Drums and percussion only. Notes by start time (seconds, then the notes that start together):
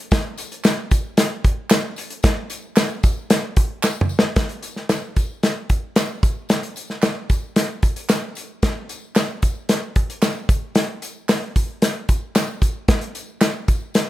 0.11 kick, snare, closed hi-hat, tambourine
0.38 closed hi-hat, tambourine
0.52 closed hi-hat
0.64 snare, clap, closed hi-hat, tambourine
0.91 kick, closed hi-hat, tambourine
1.17 snare, closed hi-hat, tambourine
1.44 kick, closed hi-hat
1.70 snare, clap, closed hi-hat, tambourine
1.96 closed hi-hat, tambourine
2.10 closed hi-hat
2.23 kick, snare, closed hi-hat, tambourine
2.50 closed hi-hat, tambourine
2.76 snare, clap, closed hi-hat, tambourine
3.03 kick, closed hi-hat, tambourine
3.30 snare, closed hi-hat, tambourine
3.56 kick, closed hi-hat
3.83 snare, clap, tambourine
4.01 mid tom
4.09 tambourine
4.19 snare
4.36 kick, snare, closed hi-hat, tambourine
4.49 closed hi-hat
4.63 closed hi-hat, tambourine
4.76 snare
4.89 snare, clap, closed hi-hat, tambourine
5.16 kick, closed hi-hat, tambourine
5.43 snare, closed hi-hat, tambourine
5.70 kick, closed hi-hat, tambourine
5.96 snare, clap, closed hi-hat, tambourine
6.23 kick, closed hi-hat, tambourine
6.49 snare, closed hi-hat, tambourine
6.63 closed hi-hat
6.76 closed hi-hat, tambourine
6.90 snare
7.02 snare, clap, closed hi-hat, tambourine
7.30 kick, closed hi-hat, tambourine
7.56 snare, closed hi-hat, tambourine
7.83 kick, closed hi-hat, tambourine
7.96 closed hi-hat
8.09 snare, clap, closed hi-hat, tambourine
8.35 closed hi-hat, tambourine
8.62 kick, snare, closed hi-hat, tambourine
8.89 closed hi-hat, tambourine
9.15 snare, clap, closed hi-hat, tambourine
9.42 kick, closed hi-hat, tambourine
9.69 snare, closed hi-hat, tambourine
9.96 kick, closed hi-hat
10.10 closed hi-hat
10.22 snare, clap, closed hi-hat, tambourine
10.49 kick, closed hi-hat, tambourine
10.75 snare, closed hi-hat, tambourine
11.02 closed hi-hat, tambourine
11.29 snare, clap, closed hi-hat, tambourine
11.56 kick, closed hi-hat, tambourine
11.82 snare, closed hi-hat, tambourine
12.09 kick, closed hi-hat, tambourine
12.35 snare, clap, closed hi-hat, tambourine
12.62 kick, closed hi-hat, tambourine
12.88 kick, snare, closed hi-hat
13.01 closed hi-hat
13.15 closed hi-hat, tambourine
13.41 snare, clap, closed hi-hat, tambourine
13.68 kick, closed hi-hat, tambourine
13.94 snare, closed hi-hat, tambourine